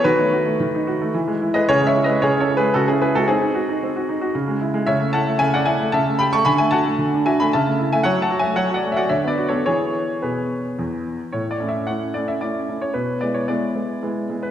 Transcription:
grand piano
0.04 D#3 F#4 B4
0.19 A3
0.33 F#4
0.46 A3
0.60 D#3
0.75 D#4
0.87 F#4
1.02 A3
1.14 E3
1.28 G#3
1.42 E4
1.54 G#3 B4 D#5
1.69 C#3 G#4 C#5
1.81 G#3
1.87 C#5 E5
1.95 E4
2.04 B4 D#5
2.09 G#3
2.22 C#3 G#4 C#5
2.37 C#4 C#5
2.41 A4
2.49 E4
2.57 G#3 G#4 B4
2.74 C#3 F#4 A4
2.88 C#4 E4 G#4
3.01 E4 G#4 B4
3.15 G#3 F#4 A4
3.28 C4 D#4 G#4
3.41 D#4
3.54 F#4
3.69 D#4
3.83 C4
3.96 F#4
4.09 D#4
4.21 F#4
4.35 C#3
4.48 G#3
4.61 E4
4.74 G#3
4.87 C#3 C#5 E5
5.00 A3
5.13 E4 F#5 A5
5.27 A3
5.39 C#3 E5 G#5
5.54 C#4 D5 F#5
5.66 E4 E5 G#5
5.80 A3
5.92 C#3 E5 A5
6.07 A3
6.19 G4 G5 B5
6.33 A3 A5 C#6
6.45 D3 G#5 B5
6.58 A3 E5 G#5
6.71 F#4 F#5 A5
6.85 A3
6.98 D3
7.13 D4
7.26 F#4 E5 G#5
7.40 A3 G#5 B5
7.53 C#3 E5 A5
7.66 A3
7.79 E4
7.93 A3 E5 G#5
8.04 F#3 C#5 F#5
8.18 A3
8.22 F#5 A5
8.31 F#4
8.39 E5 G#5
8.45 A3
8.56 F#3 C#5 F#5
8.70 F#4 F#5
8.76 D5
8.84 A3
8.92 E5
8.96 F#4 D5 F#5
9.09 D3 C#5 E5
9.25 B3 D5
9.29 B4
9.38 F#4
9.49 B3 A4 C#5
9.66 E3 B3 G#4 C#5
10.22 B2 G#4 B4
10.79 E2
11.32 A2 C#5
11.51 D5
11.60 A3 C#4 E4
11.69 E5
11.87 A3 C#4 E4 F#5
12.14 A3 C#4 E4 D5
12.28 E5
12.41 A3 C#4 E4 D5
12.69 A3 C#4 E4
12.82 C#5
12.94 B2 B4
13.21 G#3 B3 E4 D5
13.34 C#5
13.48 G#3 B3 E4 D5
13.75 G#3 B3 E4
14.03 G#3 B3 E4
14.30 G#3 B3 E4
14.43 B4

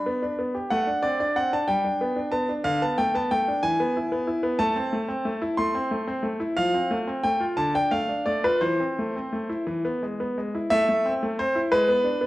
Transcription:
grand piano
Already playing: B5
0.06 B3
0.22 D4
0.39 B3
0.55 G4
0.71 A3 F#5
0.87 D4
1.03 C4 D5
1.20 D4 D5
1.36 C4 F#5
1.53 D4 A5
1.68 G3 G5
1.84 D4
2.01 B3
2.16 D4
2.32 B3 A5
2.49 D4
2.65 D3 F5
2.82 B3 A5
2.98 A3 G5
3.15 B3 A5
3.31 A3 G5
3.48 D4
3.63 E3 G#5
3.80 B3
3.97 E4
4.12 B3
4.27 E4
4.43 B3
4.59 A3 A5
4.76 C4
4.93 A3
5.08 C4
5.25 A3
5.42 E4
5.57 A3 C6
5.75 C4
5.91 A3
6.07 C4
6.23 A3
6.40 E4
6.56 F3 F5
6.74 C4
6.91 A3
7.08 C4
7.24 A3 G5
7.40 F4
7.57 D3 A5
7.75 D4 G5
7.91 A3 F5
8.09 D4
8.26 A3 D5
8.44 F4 B4
8.61 E3 C5
8.80 C4
8.99 A3
9.16 C4
9.33 A3
9.49 E4
9.67 E3
9.85 B3
10.03 G#3
10.20 B3
10.38 G#3
10.54 E4
10.70 A3 E5
10.88 A3
11.05 C4
11.22 A3
11.39 C4 C5
11.55 E4
11.71 G#3 B4
11.88 B3
12.04 D4
12.21 B3

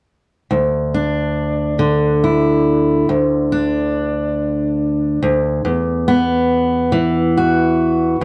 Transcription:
steel-string acoustic guitar
0.51 D2
0.94 D4
1.79 D3
2.24 E4
3.09 D2
3.52 D4
5.23 D2
5.65 E2
6.08 B3
6.92 E3
7.37 F#4

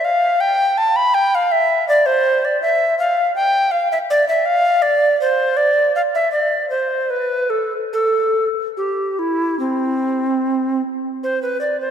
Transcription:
recorder
0.05 F5
0.41 G5
0.78 A5
0.96 B5
1.14 G5
1.35 F5
1.52 E5
1.89 D5
2.06 C5
2.45 D5
2.62 E5
2.99 F5
3.36 G5
3.71 F5
3.92 E5
4.10 D5
4.29 E5
4.46 F5
4.82 D5
5.21 C5
5.57 D5
5.96 F5
6.15 E5
6.32 D5
6.70 C5
7.10 B4
7.50 A4
7.93 A4
8.77 G4
9.19 E4
9.59 C4
11.24 C5
11.43 B4
11.61 D5
11.80 C5

